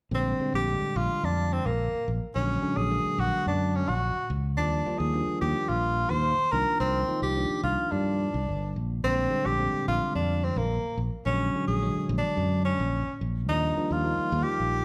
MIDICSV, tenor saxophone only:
0, 0, Header, 1, 2, 480
1, 0, Start_track
1, 0, Tempo, 557103
1, 104, Time_signature, 4, 2, 24, 8
1, 12794, End_track
2, 0, Start_track
2, 0, Title_t, "Tenor saxophone"
2, 0, Program_c, 0, 66
2, 124, Note_on_c, 0, 60, 75
2, 450, Note_off_c, 0, 60, 0
2, 475, Note_on_c, 0, 67, 81
2, 834, Note_on_c, 0, 65, 83
2, 847, Note_off_c, 0, 67, 0
2, 1074, Note_on_c, 0, 62, 76
2, 1087, Note_off_c, 0, 65, 0
2, 1315, Note_on_c, 0, 60, 67
2, 1328, Note_off_c, 0, 62, 0
2, 1431, Note_on_c, 0, 58, 70
2, 1444, Note_off_c, 0, 60, 0
2, 1787, Note_off_c, 0, 58, 0
2, 2024, Note_on_c, 0, 61, 77
2, 2382, Note_on_c, 0, 68, 89
2, 2395, Note_off_c, 0, 61, 0
2, 2754, Note_on_c, 0, 66, 83
2, 2766, Note_off_c, 0, 68, 0
2, 2988, Note_off_c, 0, 66, 0
2, 2995, Note_on_c, 0, 62, 72
2, 3232, Note_on_c, 0, 61, 71
2, 3245, Note_off_c, 0, 62, 0
2, 3347, Note_on_c, 0, 66, 78
2, 3360, Note_off_c, 0, 61, 0
2, 3705, Note_off_c, 0, 66, 0
2, 3939, Note_on_c, 0, 62, 81
2, 4293, Note_on_c, 0, 68, 75
2, 4306, Note_off_c, 0, 62, 0
2, 4658, Note_off_c, 0, 68, 0
2, 4661, Note_on_c, 0, 67, 82
2, 4901, Note_on_c, 0, 65, 84
2, 4914, Note_off_c, 0, 67, 0
2, 5254, Note_on_c, 0, 72, 98
2, 5267, Note_off_c, 0, 65, 0
2, 5614, Note_on_c, 0, 70, 88
2, 5627, Note_off_c, 0, 72, 0
2, 5851, Note_off_c, 0, 70, 0
2, 5856, Note_on_c, 0, 60, 88
2, 6194, Note_off_c, 0, 60, 0
2, 6226, Note_on_c, 0, 67, 71
2, 6559, Note_off_c, 0, 67, 0
2, 6578, Note_on_c, 0, 65, 78
2, 6820, Note_on_c, 0, 62, 67
2, 6833, Note_off_c, 0, 65, 0
2, 7540, Note_off_c, 0, 62, 0
2, 7786, Note_on_c, 0, 60, 85
2, 8150, Note_on_c, 0, 67, 88
2, 8163, Note_off_c, 0, 60, 0
2, 8505, Note_off_c, 0, 67, 0
2, 8511, Note_on_c, 0, 65, 84
2, 8729, Note_off_c, 0, 65, 0
2, 8747, Note_on_c, 0, 62, 80
2, 8991, Note_on_c, 0, 60, 72
2, 9004, Note_off_c, 0, 62, 0
2, 9114, Note_on_c, 0, 58, 66
2, 9127, Note_off_c, 0, 60, 0
2, 9467, Note_off_c, 0, 58, 0
2, 9701, Note_on_c, 0, 61, 81
2, 10036, Note_off_c, 0, 61, 0
2, 10059, Note_on_c, 0, 68, 81
2, 10394, Note_off_c, 0, 68, 0
2, 10495, Note_on_c, 0, 62, 85
2, 10869, Note_off_c, 0, 62, 0
2, 10898, Note_on_c, 0, 61, 74
2, 11345, Note_off_c, 0, 61, 0
2, 11623, Note_on_c, 0, 63, 88
2, 11994, Note_on_c, 0, 65, 79
2, 12007, Note_off_c, 0, 63, 0
2, 12437, Note_on_c, 0, 67, 93
2, 12450, Note_off_c, 0, 65, 0
2, 12794, Note_off_c, 0, 67, 0
2, 12794, End_track
0, 0, End_of_file